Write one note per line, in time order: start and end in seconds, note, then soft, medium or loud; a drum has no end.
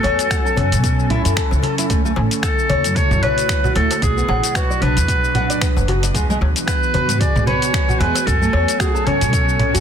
0.00 1.90 F#3 medium
0.00 0.63 B3 medium
0.00 2.65 C#4 medium
0.00 0.63 F#4 medium
0.00 1.36 A4 loud
0.00 0.29 C#5 loud
0.00 2.76 G#5 medium
0.00 darbuka tek medium
0.04 0.14 E2 loud
0.04 closed hi-hat soft
0.04 darbuka ka soft
0.18 2.75 A4 medium
0.18 closed hi-hat soft
0.18 cabasa medium
0.30 0.44 F#4 medium
0.30 finger snap loud
0.30 kick loud
0.30 closed hi-hat medium
0.30 cabasa medium
0.46 0.57 A4 medium
0.46 cabasa soft
0.57 0.74 F#2 medium
0.57 0.71 C#4 medium
0.57 closed hi-hat soft
0.57 darbuka ka medium
0.57 darbuka dum medium
0.72 1.10 B2 medium
0.72 closed hi-hat soft
0.72 darbuka tek soft
0.72 cabasa medium
0.84 kick loud
0.84 closed hi-hat medium
0.84 cabasa soft
0.99 darbuka ka soft
0.99 cabasa soft
1.10 1.20 A2 loud
1.10 1.24 E4 loud
1.10 closed hi-hat soft
1.10 low conga medium
1.25 1.33 F#2 medium
1.25 1.36 E4 medium
1.25 closed hi-hat soft
1.25 cabasa medium
1.37 1.51 A4 medium
1.37 finger snap loud
1.37 kick loud
1.37 closed hi-hat medium
1.37 cabasa soft
1.51 1.59 C#2 medium
1.51 darbuka tek medium
1.51 cabasa soft
1.63 1.77 A4 medium
1.63 closed hi-hat soft
1.63 darbuka ka soft
1.63 darbuka dum medium
1.78 1.85 E4 medium
1.78 closed hi-hat medium
1.78 cabasa medium
1.90 2.09 D2 loud
1.90 4.02 D3 medium
1.90 2.03 A3 medium
1.90 kick loud
1.90 closed hi-hat medium
1.90 cabasa medium
2.03 4.02 A3 medium
2.03 2.12 A3 loud
2.03 cabasa soft
2.16 2.26 A1 loud
2.16 darbuka tek medium
2.20 4.88 E4 medium
2.31 closed hi-hat soft
2.31 cabasa medium
2.43 2.98 A4 loud
2.43 finger snap loud
2.43 kick loud
2.43 closed hi-hat medium
2.43 cabasa medium
2.59 cabasa soft
2.64 4.88 F#4 medium
2.70 2.85 D2 medium
2.70 2.84 C#5 medium
2.70 closed hi-hat soft
2.70 darbuka dum loud
2.84 2.92 F#2 medium
2.84 closed hi-hat soft
2.84 darbuka tek soft
2.84 cabasa medium
2.96 3.21 A4 medium
2.96 3.24 C#5 loud
2.96 kick loud
2.96 closed hi-hat medium
2.96 darbuka dum medium
2.96 cabasa medium
3.11 3.19 F#2 loud
3.11 low conga medium
3.11 cabasa soft
3.22 3.75 B4 loud
3.22 3.63 C#5 loud
3.22 closed hi-hat soft
3.22 darbuka dum medium
3.22 low conga medium
3.38 closed hi-hat soft
3.38 cabasa medium
3.49 finger snap loud
3.49 kick loud
3.49 closed hi-hat medium
3.49 cabasa medium
3.64 3.74 F#4 medium
3.64 darbuka ka medium
3.64 low conga medium
3.64 cabasa soft
3.76 3.86 D2 medium
3.76 3.90 A3 medium
3.76 4.00 A4 loud
3.76 closed hi-hat soft
3.76 darbuka tek medium
3.91 closed hi-hat medium
3.91 darbuka ka medium
3.91 darbuka tek medium
3.91 cabasa medium
4.02 4.21 B1 medium
4.02 6.15 B2 medium
4.02 4.57 G#4 loud
4.02 kick loud
4.02 closed hi-hat medium
4.02 low conga medium
4.02 cabasa medium
4.17 4.28 B3 medium
4.17 cabasa soft
4.21 6.15 F#3 loud
4.28 4.38 A1 loud
4.28 4.54 F#5 loud
4.28 darbuka tek medium
4.36 7.00 D4 medium
4.44 closed hi-hat soft
4.44 cabasa medium
4.55 4.84 F#4 medium
4.55 4.69 B4 medium
4.55 finger snap loud
4.55 kick loud
4.55 closed hi-hat medium
4.55 cabasa medium
4.70 4.81 D5 medium
4.70 cabasa soft
4.81 4.98 B1 medium
4.81 4.96 D4 medium
4.81 5.88 B4 loud
4.81 closed hi-hat soft
4.81 darbuka ka medium
4.81 darbuka dum loud
4.97 5.04 E2 medium
4.97 closed hi-hat soft
4.97 darbuka tek soft
4.97 cabasa medium
5.08 kick loud
5.08 closed hi-hat medium
5.08 cabasa medium
5.24 cabasa soft
5.35 5.48 F#5 loud
5.35 closed hi-hat soft
5.35 low conga medium
5.50 5.61 D5 medium
5.50 closed hi-hat soft
5.50 cabasa medium
5.61 5.87 B4 medium
5.61 finger snap loud
5.61 kick loud
5.61 closed hi-hat medium
5.61 cabasa medium
5.77 6.08 F#1 medium
5.77 darbuka tek medium
5.77 cabasa soft
5.88 6.01 F#4 medium
5.88 closed hi-hat soft
5.88 darbuka ka medium
5.88 darbuka dum medium
6.03 6.14 D5 medium
6.03 closed hi-hat medium
6.03 cabasa medium
6.14 6.33 E2 loud
6.14 8.27 E3 medium
6.14 6.28 G#3 medium
6.14 kick loud
6.14 closed hi-hat medium
6.14 cabasa medium
6.20 9.12 B3 medium
6.28 6.36 G#3 loud
6.28 9.12 F#4 medium
6.28 cabasa soft
6.41 6.51 D2 medium
6.41 darbuka tek medium
6.56 closed hi-hat soft
6.56 cabasa medium
6.67 7.21 B4 loud
6.67 finger snap loud
6.67 kick loud
6.67 closed hi-hat medium
6.67 cabasa medium
6.83 cabasa soft
6.94 7.09 E2 medium
6.94 7.09 B4 medium
6.94 closed hi-hat soft
6.94 darbuka dum medium
7.02 9.80 G#5 medium
7.09 7.17 G#2 medium
7.09 closed hi-hat soft
7.09 darbuka tek soft
7.09 cabasa medium
7.20 7.46 G#4 medium
7.20 7.46 D5 loud
7.20 kick loud
7.20 closed hi-hat medium
7.20 darbuka dum medium
7.20 cabasa medium
7.36 7.44 G#2 loud
7.36 low conga medium
7.36 cabasa soft
7.46 7.87 B4 loud
7.46 8.01 C#5 loud
7.46 closed hi-hat soft
7.46 darbuka dum medium
7.46 low conga medium
7.62 closed hi-hat soft
7.62 cabasa medium
7.74 finger snap loud
7.74 kick loud
7.74 closed hi-hat medium
7.74 cabasa medium
7.88 7.99 F#4 medium
7.88 darbuka ka medium
7.88 low conga medium
7.88 cabasa soft
8.00 8.10 E2 loud
8.00 8.15 G#3 medium
8.00 8.28 B4 loud
8.00 closed hi-hat soft
8.00 darbuka tek medium
8.15 closed hi-hat medium
8.15 darbuka ka medium
8.15 darbuka tek medium
8.15 cabasa medium
8.26 8.46 F#2 loud
8.26 9.80 F#3 medium
8.26 8.81 A4 loud
8.26 kick loud
8.26 closed hi-hat medium
8.26 low conga medium
8.26 cabasa medium
8.39 8.53 A3 medium
8.39 9.80 A4 loud
8.39 cabasa soft
8.49 9.80 C#4 medium
8.53 8.63 E2 loud
8.53 8.79 C#5 loud
8.53 darbuka ka soft
8.53 darbuka tek medium
8.68 closed hi-hat soft
8.68 cabasa medium
8.79 8.93 F#4 medium
8.79 9.07 G#4 medium
8.79 finger snap loud
8.79 kick loud
8.79 closed hi-hat medium
8.79 cabasa medium
8.95 9.06 A4 medium
8.95 cabasa soft
9.06 9.23 F#2 medium
9.06 9.21 C#4 medium
9.06 9.80 C#5 loud
9.06 closed hi-hat soft
9.06 darbuka ka medium
9.06 darbuka dum loud
9.21 9.59 B2 medium
9.21 closed hi-hat soft
9.21 darbuka tek soft
9.21 cabasa medium
9.33 kick loud
9.33 closed hi-hat medium
9.33 cabasa medium
9.49 cabasa soft
9.59 9.70 A2 loud
9.59 9.74 C#4 medium
9.59 closed hi-hat soft
9.59 low conga medium
9.74 9.80 F#2 medium
9.74 9.80 F#4 loud
9.74 closed hi-hat soft
9.74 cabasa medium